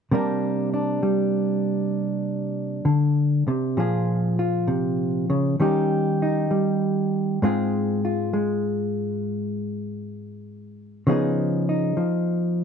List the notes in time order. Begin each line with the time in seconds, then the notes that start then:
0.11 C3 G3 A#3 D4 A#4
0.74 D4
1.03 G3
2.85 D3
3.48 C3
3.77 A#2 F3 F4 G#4
4.39 F4
4.67 C3
5.30 C#3
5.60 D#3 G3 C#4 D#4 G4
6.22 D#4
6.51 G3
7.42 G#2 G#3 C4 F4 G#4
8.05 F4
8.33 G#3
11.07 C#3 F3 B3 D#4 G#4
11.69 D#4
11.97 F3